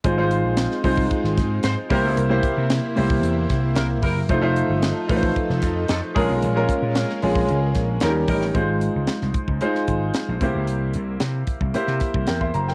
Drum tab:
HH |x-x-x-o-x-x-x-o-|x-x-x-o-x-x-x-o-|x-x-x-o-x-x-x-o-|x-x-x-o-x-x-x-o-|
SD |----oo---oo-o---|----o-----o-o---|----o----oo-o---|----oo----o-o--o|
BD |o-----ooo-o---o-|--o----o--o---o-|o-----ooo-o---o-|--o----o--o---o-|

HH |x-x-x-x-x-x-x-x-|x-x-x-x-x-x-x-x-|
SD |----oo---o--o---|----o----oo-o--o|
BD |o-----oo--o---o-|------oo--oo-o--|